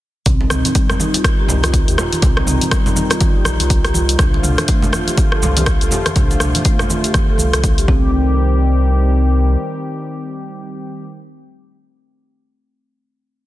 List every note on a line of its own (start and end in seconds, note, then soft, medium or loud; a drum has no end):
0.26 0.48 C2 loud
0.26 4.16 C3 medium
0.26 4.15 D#3 medium
0.26 4.16 G3 medium
0.26 0.39 C4 medium
0.26 4.16 D#4 medium
0.26 kick loud
0.26 closed hi-hat medium
0.26 mid tom medium
0.26 low conga medium
0.26 shaker soft
0.41 muted conga medium
0.50 0.63 C2 loud
0.50 0.64 C4 medium
0.50 cross-stick medium
0.50 mid tom medium
0.50 shaker medium
0.65 closed hi-hat soft
0.65 high conga medium
0.65 shaker soft
0.75 0.89 G3 medium
0.75 kick loud
0.75 closed hi-hat medium
0.75 muted conga soft
0.75 shaker soft
0.90 cross-stick medium
0.90 low conga loud
0.90 shaker soft
1.00 1.13 D#4 medium
1.00 high conga medium
1.00 shaker medium
1.14 1.20 F4 medium
1.14 closed hi-hat soft
1.14 muted conga soft
1.14 shaker soft
1.24 kick loud
1.24 cross-stick loud
1.24 closed hi-hat medium
1.24 shaker medium
1.39 1.48 G4 medium
1.48 1.84 C2 medium
1.48 high conga medium
1.48 low conga loud
1.48 shaker medium
1.63 1.73 F4 medium
1.63 cross-stick medium
1.63 closed hi-hat soft
1.63 muted conga soft
1.63 high conga medium
1.63 shaker soft
1.74 kick loud
1.74 closed hi-hat medium
1.74 shaker medium
1.88 1.96 D#2 medium
1.88 1.97 G4 medium
1.88 closed hi-hat soft
1.88 shaker soft
1.98 2.11 F4 loud
1.98 cross-stick loud
1.98 muted conga medium
1.98 low conga loud
1.98 shaker medium
2.13 closed hi-hat soft
2.13 high conga medium
2.13 shaker soft
2.22 2.44 C2 loud
2.22 2.36 C4 medium
2.22 kick loud
2.22 closed hi-hat medium
2.22 mid tom medium
2.22 low conga loud
2.22 shaker medium
2.37 cross-stick medium
2.37 muted conga medium
2.47 2.60 C2 loud
2.47 2.61 C4 medium
2.47 mid tom medium
2.47 shaker medium
2.61 closed hi-hat soft
2.61 high conga medium
2.61 shaker soft
2.71 2.86 G3 medium
2.71 kick loud
2.71 cross-stick loud
2.71 closed hi-hat medium
2.71 muted conga soft
2.71 shaker medium
2.86 low conga loud
2.86 shaker soft
2.96 3.10 D#4 medium
2.96 high conga loud
2.96 shaker loud
3.10 3.17 F4 medium
3.10 cross-stick medium
3.10 closed hi-hat soft
3.10 muted conga medium
3.10 shaker soft
3.20 kick loud
3.20 closed hi-hat medium
3.20 high conga medium
3.20 shaker medium
3.35 3.44 G1 loud
3.35 3.45 G4 medium
3.45 3.58 A#1 loud
3.45 cross-stick loud
3.45 high conga medium
3.45 shaker medium
3.60 4.17 C2 medium
3.60 3.70 F4 medium
3.60 closed hi-hat soft
3.60 muted conga soft
3.60 shaker soft
3.70 kick loud
3.70 closed hi-hat medium
3.70 shaker medium
3.85 3.94 G4 medium
3.85 cross-stick medium
3.85 closed hi-hat soft
3.85 shaker soft
3.94 4.08 F4 loud
3.94 muted conga soft
3.94 high conga medium
3.94 shaker loud
4.09 closed hi-hat soft
4.09 shaker soft
4.19 4.41 C2 loud
4.19 7.85 D3 medium
4.19 7.85 F3 medium
4.19 7.85 A3 medium
4.19 4.32 D4 medium
4.19 7.85 F4 medium
4.19 kick loud
4.19 cross-stick medium
4.19 closed hi-hat medium
4.19 mid tom medium
4.19 low conga loud
4.19 shaker medium
4.34 muted conga medium
4.43 4.56 C2 loud
4.43 4.57 D4 medium
4.43 mid tom medium
4.43 shaker medium
4.58 cross-stick medium
4.58 closed hi-hat soft
4.58 high conga medium
4.58 shaker soft
4.68 4.83 A3 medium
4.68 kick loud
4.68 closed hi-hat medium
4.68 muted conga soft
4.68 shaker medium
4.82 low conga loud
4.82 shaker soft
4.93 5.06 F4 medium
4.93 cross-stick loud
4.93 high conga loud
4.93 shaker loud
5.08 5.13 G4 medium
5.08 closed hi-hat soft
5.08 muted conga soft
5.08 shaker soft
5.17 kick loud
5.17 closed hi-hat medium
5.17 shaker medium
5.32 5.42 A4 medium
5.32 cross-stick medium
5.42 5.78 C2 loud
5.42 high conga medium
5.42 low conga loud
5.42 shaker medium
5.57 5.66 G4 medium
5.57 closed hi-hat soft
5.57 muted conga soft
5.57 high conga medium
5.57 shaker soft
5.66 kick loud
5.66 cross-stick loud
5.66 closed hi-hat medium
5.66 shaker medium
5.81 5.90 C2 medium
5.81 5.91 A4 medium
5.81 closed hi-hat soft
5.81 shaker soft
5.91 6.05 G4 loud
5.91 muted conga soft
5.91 low conga loud
5.91 shaker medium
6.06 cross-stick medium
6.06 closed hi-hat soft
6.06 high conga medium
6.06 shaker soft
6.16 6.38 C2 loud
6.16 6.29 D4 medium
6.16 kick loud
6.16 closed hi-hat medium
6.16 mid tom medium
6.16 low conga medium
6.16 shaker medium
6.31 muted conga medium
6.31 shaker soft
6.40 6.53 C2 loud
6.40 6.54 D4 medium
6.40 cross-stick medium
6.40 mid tom medium
6.40 shaker loud
6.55 closed hi-hat soft
6.55 high conga medium
6.55 shaker soft
6.65 6.79 A3 medium
6.65 kick loud
6.65 closed hi-hat medium
6.65 muted conga soft
6.65 shaker medium
6.79 cross-stick medium
6.79 low conga loud
6.79 shaker soft
6.90 7.03 F4 medium
6.90 high conga medium
6.90 shaker loud
7.04 7.10 G4 medium
7.04 closed hi-hat soft
7.04 muted conga soft
7.04 shaker soft
7.14 kick loud
7.14 cross-stick medium
7.14 closed hi-hat medium
7.14 high conga loud
7.14 shaker medium
7.29 7.37 G1 loud
7.29 7.39 A4 medium
7.38 7.51 C2 loud
7.38 high conga medium
7.38 shaker loud
7.53 7.88 C2 medium
7.53 7.63 A4 medium
7.53 cross-stick medium
7.53 closed hi-hat soft
7.53 muted conga soft
7.53 shaker soft
7.64 kick loud
7.64 closed hi-hat medium
7.64 shaker medium
7.78 7.84 G4 medium
7.78 closed hi-hat soft
7.78 shaker soft
7.88 9.56 C2 loud
7.88 11.05 D#3 medium
7.88 11.05 G3 medium
7.88 8.34 C4 loud
7.88 11.05 C4 medium
7.88 11.05 G4 medium
7.88 kick loud
7.88 muted conga medium
7.88 high conga medium